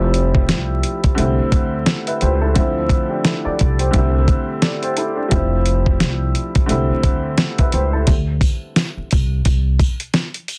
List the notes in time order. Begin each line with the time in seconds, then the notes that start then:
Already playing: F1 F3 G3 A3 C4 E4
0.14 closed hi-hat
0.35 kick
0.49 C2, snare, closed hi-hat
0.83 closed hi-hat
1.04 kick, closed hi-hat
1.15 C2 D3 G3 A3 C4, closed hi-hat
1.19 E4
1.39 muted upright bass stroke
1.52 D2, kick, closed hi-hat
1.86 snare, closed hi-hat
2.07 B4 E5, closed hi-hat
2.21 C#2 G4 C5, closed hi-hat
2.41 E4 A4
2.54 D2 D3 F3 A3 C4, kick, closed hi-hat
2.59 E4
2.89 kick, closed hi-hat
3.09 D4 G4
3.24 E4 A4, snare, closed hi-hat
3.45 A4 D5, muted upright bass stroke
3.59 C2, kick, closed hi-hat
3.79 G4 C5, closed hi-hat
3.91 C2 D3 G3 A3 C4, kick, closed hi-hat
3.95 E4
4.28 kick, closed hi-hat
4.62 A4 D5, snare, closed hi-hat
4.82 G4 C5, closed hi-hat
4.97 E4 A4, closed hi-hat
5.16 D4 G4
5.29 F1 F3 G3 A3 C4, kick, closed hi-hat
5.33 E4
5.66 closed hi-hat
5.86 kick
6.00 C2, snare, closed hi-hat
6.35 closed hi-hat
6.55 kick, closed hi-hat
6.66 D3 G3 A3 C4, closed hi-hat
6.70 C2 E4
6.90 muted upright bass stroke
7.03 D2, kick, closed hi-hat
7.38 snare, closed hi-hat
7.58 B4 E5, kick, closed hi-hat
7.72 C#2 G4 C5, closed hi-hat
7.93 E4 A4
8.07 D2, kick, closed hi-hat, sleigh bells
8.41 kick, closed hi-hat, sleigh bells
8.76 snare, closed hi-hat, sleigh bells
8.97 muted upright bass stroke
9.11 C2, kick, closed hi-hat, sleigh bells
9.45 C2, kick, closed hi-hat, sleigh bells
9.79 kick, closed hi-hat, sleigh bells
10.00 closed hi-hat
10.14 snare, closed hi-hat, sleigh bells
10.34 closed hi-hat
10.48 closed hi-hat, sleigh bells